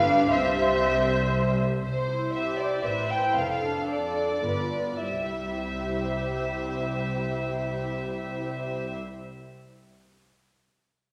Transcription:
Already playing: double bass section G1, viola section G3 B4, violin section F5
0.06 cello section D4
0.30 double bass section C2, viola section G3 C5, cello section C4, violin section E5
1.82 double bass section C2, cello section C3, violin section C5
2.08 viola section E4 C5
2.33 cello section C3, violin section G4 E5
2.59 viola section E4 C5, violin section D5
2.84 double bass section A1, cello section A2, viola section E4 C5, violin section B4 E5
3.09 viola section E4 C5, violin section G5
3.35 double bass section F1, cello section F2, violin section A4 F5
3.61 viola section D4 A4
3.88 cello section F2, violin section D5
4.16 viola section D4 A4
4.43 double bass section G1, cello section G2, viola section B3 F4, violin section B4
4.74 viola section B3 F4
5.04 cello section C2, double bass section C2, viola section G3 E4, violin section G4 C5 E5

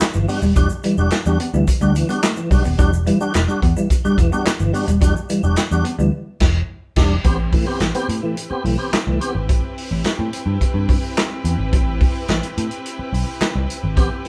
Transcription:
0.00 tonewheel organ D4 F#4, muted clean electric guitar stroke, muted picked electric bass stroke, snare, clap, closed hi-hat, shaker
0.13 picked electric bass G1, tonewheel organ E3, shaker
0.28 tonewheel organ G3 D4 F#4, clean electric guitar B3, open hi-hat, shaker
0.42 picked electric bass D#1, clean electric guitar G3, shaker
0.56 picked electric bass E1, clean electric guitar E3, tonewheel organ G3 D4 F#4, kick, closed hi-hat, shaker
0.69 muted clean electric guitar stroke, shaker
0.83 tonewheel organ E3, clean electric guitar G3, closed hi-hat, shaker
0.97 picked electric bass E1, tonewheel organ G3 D4 F#4, shaker
1.10 muted picked electric bass stroke, muted clean electric guitar stroke, snare, clap, closed hi-hat, shaker
1.26 picked electric bass E2, tonewheel organ G3 D4 F#4, shaker
1.40 clean electric guitar B3, closed hi-hat
1.53 picked electric bass D2, tonewheel organ E3, clean electric guitar G3, shaker
1.67 kick, closed hi-hat, shaker
1.81 picked electric bass D2, clean electric guitar G3, tonewheel organ G3 D4 F#4, shaker
1.95 tonewheel organ E3, muted clean electric guitar stroke, closed hi-hat, shaker
2.09 tonewheel organ G3 D4 F#4, clean electric guitar B3, closed hi-hat, shaker
2.23 clean electric guitar A3, tonewheel organ D4 F#4, snare, clap, closed hi-hat, shaker
2.36 tonewheel organ E3, muted clean electric guitar stroke, shaker
2.51 picked electric bass B1, tonewheel organ G3 D4 F#4, kick, open hi-hat, shaker
2.65 picked electric bass D#1, clean electric guitar B3, shaker
2.78 picked electric bass E1, clean electric guitar E3, tonewheel organ G3 D4 F#4, kick, closed hi-hat, shaker
2.93 muted clean electric guitar stroke, shaker
3.07 tonewheel organ E3, clean electric guitar G3, closed hi-hat, shaker
3.20 tonewheel organ G3 D4 F#4, shaker
3.34 picked electric bass E1, muted clean electric guitar stroke, snare, clap, closed hi-hat, shaker
3.48 tonewheel organ G3 D4 F#4, shaker
3.62 picked electric bass E2, clean electric guitar B3, kick, closed hi-hat
3.76 tonewheel organ E3, clean electric guitar G3, shaker
3.90 kick, closed hi-hat, shaker
4.04 tonewheel organ G3 D4 F#4, clean electric guitar G3, muted picked electric bass stroke, shaker
4.18 picked electric bass E1, tonewheel organ E3, muted clean electric guitar stroke, kick, closed hi-hat, shaker
4.32 tonewheel organ G3 D4 F#4, clean electric guitar B3, shaker
4.46 tonewheel organ D4 F#4, muted clean electric guitar stroke, muted picked electric bass stroke, snare, clap, closed hi-hat, shaker
4.60 picked electric bass G1, tonewheel organ E3, shaker
4.73 tonewheel organ G3 D4 F#4, clean electric guitar B3, open hi-hat, shaker
4.88 picked electric bass D#1, clean electric guitar G3, closed hi-hat, shaker
5.01 picked electric bass E1, clean electric guitar E3, tonewheel organ G3 D4 F#4, kick, closed hi-hat, shaker
5.16 muted clean electric guitar stroke, shaker
5.29 tonewheel organ E3, clean electric guitar G3, closed hi-hat, shaker
5.43 picked electric bass E1, tonewheel organ G3 D4 F#4, shaker
5.56 muted clean electric guitar stroke, muted picked electric bass stroke, snare, clap, closed hi-hat, shaker
5.71 picked electric bass E2, tonewheel organ G3 D4 F#4, shaker
5.85 clean electric guitar B3, closed hi-hat
5.99 picked electric bass D2, tonewheel organ E3, clean electric guitar G3, shaker
6.40 picked electric bass E1, kick, snare, crash
6.96 picked electric bass E1, tonewheel organ G3 D4, kick, snare, crash
7.24 picked electric bass A1, tonewheel organ B3 C4 G4, string section C4 E4 G4 B4, kick, closed hi-hat
7.52 tonewheel organ A2 E3, kick, open hi-hat
7.66 tonewheel organ B3 C4 G4
7.80 picked electric bass A1, snare, clap, closed hi-hat
7.94 tonewheel organ B3 C4 G4, closed hi-hat
8.09 picked electric bass A2, closed hi-hat
8.23 tonewheel organ A2 E3
8.37 closed hi-hat
8.50 tonewheel organ B3 C4 G4, muted picked electric bass stroke
8.64 picked electric bass B1, tonewheel organ A2 E3, open hi-hat
8.78 tonewheel organ B3 C4 G4
8.92 tonewheel organ C4 G4, muted picked electric bass stroke, snare, clap, closed hi-hat
9.07 picked electric bass C2, tonewheel organ A2 E3
9.20 tonewheel organ B3 C4 G4, closed hi-hat
9.35 picked electric bass G#1
9.49 picked electric bass A1, kick, closed hi-hat
9.78 open hi-hat
9.91 picked electric bass A1
10.04 muted picked electric bass stroke, snare, clap, closed hi-hat
10.19 picked electric bass A2
10.33 closed hi-hat
10.46 picked electric bass G2
10.61 muted picked electric bass stroke, kick, closed hi-hat
10.74 picked electric bass G2
10.89 kick, open hi-hat
11.17 snare, clap, closed hi-hat
11.44 picked electric bass E2, closed hi-hat
11.58 picked electric bass G#1
11.73 picked electric bass A1, kick, closed hi-hat
12.01 kick, open hi-hat
12.28 picked electric bass A1, snare, clap, closed hi-hat
12.43 closed hi-hat
12.58 picked electric bass A2, closed hi-hat
12.71 closed hi-hat
12.86 closed hi-hat
12.99 muted picked electric bass stroke
13.13 picked electric bass B1, open hi-hat
13.41 muted picked electric bass stroke, snare, clap, closed hi-hat
13.55 picked electric bass C2
13.70 closed hi-hat
13.84 picked electric bass G#1
13.96 picked electric bass A1, tonewheel organ B3 C4 G4, kick, closed hi-hat
14.25 open hi-hat

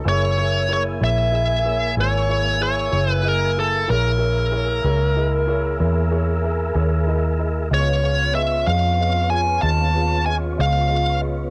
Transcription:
0.04 fingered electric bass F#1, horn section A#3 E4 G#5, tonewheel organ A#3 G#4 E5, grand piano E4 G#4 A#4 C#5
0.08 lead electric guitar C#5
0.36 tonewheel organ A#3 E5 G#5, grand piano E4 G#4 A#4 E5
0.68 grand piano E4 G#4 A#4 C#5
0.73 lead electric guitar C#5
1.00 fingered electric bass A#1, grand piano E4 G#4 A#4 C#5, lead electric guitar E5
1.31 grand piano E4 G#4 A#4 D#5
1.64 grand piano E4 G#4 A#4 C#5
1.97 fingered electric bass G#1, grand piano E4 G#4 A#4 C#5, lead electric guitar C#5
2.29 grand piano E4 G#4 A#4 C#5
2.60 grand piano E4 G#4 A#4 C#5, lead electric guitar C#5
2.91 fingered electric bass F#1, grand piano E4 G#4 A#4 C#5
3.12 lead electric guitar B4
3.23 grand piano E4 G#4 A#4 D#5
3.28 lead electric guitar A#4
3.56 grand piano E4 G#4 A#4 E5, lead electric guitar A4
3.88 fingered electric bass A#1, grand piano E4 G#4 A#4 C#5, tonewheel organ G#4 A#4 E5, horn section A#4, lead electric guitar A#4
4.18 grand piano E4 G#4 A#4 C#5
4.52 grand piano E4 G#4 A#4 C#5
4.84 fingered electric bass C#2, grand piano E4 G#4 A#4 C#5
5.16 grand piano E4 G#4 A#4 D#5
5.47 grand piano E4 G#4 A#4 C#5
5.79 fingered electric bass E2, grand piano E4 G#4 A#4 C#5
6.11 grand piano E4 G#4 A#4 C#5
6.44 grand piano E4 G#4 A#4 E5
6.74 fingered electric bass D#2, grand piano E4 G#4 A#4 C#5
7.07 grand piano E4 G#4 A#4 D#5
7.39 grand piano E4 G#4 A#4 D#5
7.70 fingered electric bass C#2, horn section B3 C#4 F4, tonewheel organ B3 F4 C#5, grand piano F4 G#4 B4 D#5, lead electric guitar C#5
8.03 grand piano F4 G#4 B4 C#5
8.34 grand piano F4 G#4 B4 D#5, lead electric guitar E5
8.67 fingered electric bass F2, grand piano F4 G#4 B4 D#5, lead electric guitar F5
8.99 grand piano F4 G#4 B4 D#5
9.30 grand piano F4 G#4 B4 C#5, lead electric guitar G#5
9.62 fingered electric bass D#2, horn section C#4, grand piano F4 G#4 B4 D#5, lead electric guitar A5
9.94 grand piano F4 G#4 B4 F5
10.25 grand piano F4 G#4 B4 D#5, lead electric guitar G#5
10.56 fingered electric bass C#2, grand piano F4 G#4 B4 D#5
10.61 lead electric guitar F5
10.88 grand piano F4 G#4 B4 D#5
11.19 grand piano F4 G#4 B4 D#5

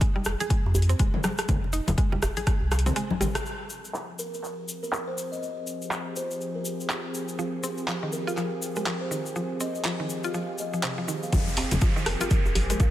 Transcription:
0.01 synth arpeggio sound G#3, kick, closed hi-hat, muted conga, cabasa
0.16 synth arpeggio sound G3, djembe tone
0.25 sub bass F1, cross-stick, cabasa
0.40 synth arpeggio sound G#4, closed hi-hat, muted conga, cabasa
0.49 synth arpeggio sound G#3, kick, closed hi-hat, high conga, cabasa
0.65 sub bass F2, djembe tone
0.75 closed hi-hat, muted conga, djembe tone, djembe bass, cabasa
0.82 closed hi-hat
0.89 synth arpeggio sound C4, closed hi-hat, djembe tone, cabasa
0.99 sub bass D#1, synth arpeggio sound G#3, kick, closed hi-hat, djembe tone, cabasa
1.14 mid tom, high conga
1.24 synth arpeggio sound G3, cross-stick, muted conga, djembe slap, high conga, cabasa
1.38 cross-stick, closed hi-hat, cabasa
1.48 sub bass F1, synth arpeggio sound G#3, kick, closed hi-hat, mid tom, high conga, low conga, cabasa
1.64 muted conga
1.73 synth arpeggio sound D#4, closed hi-hat, cabasa
1.87 sub bass F1, closed hi-hat, djembe slap, high conga, low conga, cabasa
1.98 synth arpeggio sound G#3, kick, closed hi-hat, muted conga, cabasa
2.12 synth arpeggio sound G3, djembe tone, low conga
2.22 sub bass F1, cross-stick, closed hi-hat, djembe slap, djembe bass, cabasa
2.37 synth arpeggio sound G#4, closed hi-hat, muted conga, cabasa
2.47 synth arpeggio sound G#3, kick, cross-stick, closed hi-hat, cabasa
2.60 sub bass C2, djembe tone
2.71 cross-stick, closed hi-hat, djembe slap, muted conga, high conga, cabasa
2.79 closed hi-hat
2.86 synth arpeggio sound C4, closed hi-hat, mid tom, djembe tone, cabasa
2.96 synth arpeggio sound G#3, closed hi-hat, cabasa
3.11 high conga, djembe tone
3.21 synth arpeggio sound G3, closed hi-hat, mid tom, muted conga, djembe bass, cabasa
3.35 cross-stick, closed hi-hat, djembe tone, cabasa
3.45 analog synth pad F3 C4 G4 G#4, cabasa
3.70 cabasa
3.85 cabasa
3.94 clap, cabasa
4.19 kalimba A#4, cabasa
4.34 kalimba A#4, cabasa
4.44 clap, cabasa
4.68 cabasa
4.83 kalimba A#4, cabasa
4.93 kalimba A#4, clap, cabasa
5.07 kalimba C5
5.18 cabasa
5.32 kalimba D#5, cabasa
5.42 kalimba D#5, cabasa
5.67 cabasa
5.82 cabasa
5.91 clap, cabasa
6.16 kalimba C5, cabasa
6.31 cabasa
6.41 cabasa
6.55 kalimba A#4
6.65 cabasa
6.80 cabasa
6.90 clap, cabasa
7.14 cabasa
7.28 cabasa
7.39 synth arpeggio sound F3, cabasa
7.63 synth arpeggio sound C4, cabasa
7.77 cabasa
7.88 synth arpeggio sound F3, clap, cabasa
8.03 synth arpeggio sound D#3
8.12 kalimba A#4, cabasa
8.27 synth arpeggio sound F4, kalimba A#4, cabasa
8.37 synth arpeggio sound F3, clap, cabasa
8.62 cabasa
8.76 synth arpeggio sound G#3, kalimba A#4, cabasa
8.86 synth arpeggio sound F3, clap, cabasa
9.01 kalimba C5
9.11 synth arpeggio sound D#3, cabasa
9.26 cabasa
9.36 synth arpeggio sound F3, cabasa
9.60 synth arpeggio sound C4, kalimba D#5, cabasa
9.75 kalimba D#5, cabasa
9.85 synth arpeggio sound F3, clap, cabasa
10.00 synth arpeggio sound D#3
10.10 cabasa
10.24 synth arpeggio sound F4, cabasa
10.34 synth arpeggio sound F3, kalimba F5, cabasa
10.58 kalimba D#5, cabasa
10.73 synth arpeggio sound F3, cabasa
10.83 synth arpeggio sound C3, clap, cabasa
10.98 synth arpeggio sound F3
11.08 synth arpeggio sound D#3, cabasa
11.23 kalimba F5, cabasa
11.32 sub bass F1, analog synth pad F3 C4 G4 G#4, synth arpeggio sound F3, kick, closed hi-hat, mid tom, downlifter, djembe tone, low conga, cabasa
11.47 muted conga, cabasa
11.57 synth arpeggio sound C4, open hi-hat, djembe slap, djembe tone
11.71 sub bass F1, closed hi-hat, high conga, low conga, cabasa
11.81 synth arpeggio sound F3, kick, closed hi-hat, djembe tone, cabasa
11.96 synth arpeggio sound D#3, cabasa
12.06 sub bass F1, kalimba A#4, cross-stick, open hi-hat
12.20 synth arpeggio sound F4, kalimba A#4, closed hi-hat, muted conga, djembe tone, cabasa
12.30 synth arpeggio sound F3, kick, closed hi-hat, cabasa
12.45 sub bass F1, djembe tone, cabasa
12.55 open hi-hat, muted conga, high conga, djembe bass
12.70 synth arpeggio sound G#3, kalimba A#4, closed hi-hat, djembe tone, cabasa
12.80 sub bass C2, synth arpeggio sound F3, kick, closed hi-hat, high conga, cabasa

